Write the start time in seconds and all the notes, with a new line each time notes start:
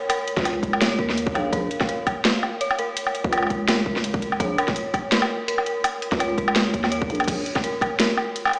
Already playing: A#4 C#5
0.09 A#4, closed hi-hat, low woodblock
0.28 closed hi-hat
0.37 C#2, kick, snare
0.39 snare
0.43 snare
0.45 snare, closed hi-hat, low woodblock
0.49 snare
0.51 snare
0.63 kick, closed hi-hat
0.73 low woodblock
0.81 C#5, snare, closed hi-hat
0.99 D#2 A#4, kick
1.10 snare
1.18 closed hi-hat
1.27 kick
1.34 A#1 F5, closed hi-hat, low woodblock
1.53 A#1 A#4, kick, closed hi-hat
1.71 closed hi-hat
1.81 kick, snare, low woodblock
1.89 A#4, closed hi-hat
2.07 kick, closed hi-hat, low woodblock
2.25 snare, closed hi-hat
2.43 low woodblock
2.61 C#5, closed hi-hat
2.71 low woodblock
2.79 A#4, closed hi-hat
2.97 closed hi-hat
3.07 low woodblock
3.15 closed hi-hat
3.24 C#2, kick
3.32 A#4, closed hi-hat, low woodblock
3.38 low woodblock
3.43 low woodblock
3.47 kick, closed hi-hat, low woodblock
3.68 A#4, snare, closed hi-hat, low woodblock
3.86 kick
3.96 snare
4.04 closed hi-hat
4.14 kick
4.22 closed hi-hat
4.32 low woodblock
4.40 A#1 C#5, kick, closed hi-hat
4.58 A#4, closed hi-hat, low woodblock
4.68 kick, snare
4.76 closed hi-hat
4.94 kick, closed hi-hat, low woodblock
5.12 A#4, snare, closed hi-hat
5.22 low woodblock
5.48 A#4, closed hi-hat
5.58 low woodblock
5.66 closed hi-hat
5.84 closed hi-hat, low woodblock
6.02 closed hi-hat
6.12 C#2, kick, snare
6.19 C#5, closed hi-hat, low woodblock
6.38 A#4, kick, closed hi-hat
6.48 low woodblock
6.56 snare, closed hi-hat
6.74 D#2, kick, closed hi-hat
6.84 snare, low woodblock
6.92 C#5, closed hi-hat
7.02 kick
7.10 A#1, closed hi-hat
7.15 closed hi-hat
7.20 closed hi-hat, low woodblock
7.24 A#1, kick, closed hi-hat
7.28 closed hi-hat, crash
7.46 closed hi-hat
7.55 kick, snare, low woodblock
7.64 A#4, closed hi-hat
7.81 kick, closed hi-hat, low woodblock
8.00 A#4, snare, closed hi-hat
8.17 low woodblock
8.36 closed hi-hat
8.45 low woodblock
8.47 low woodblock
8.49 low woodblock
8.51 closed hi-hat, low woodblock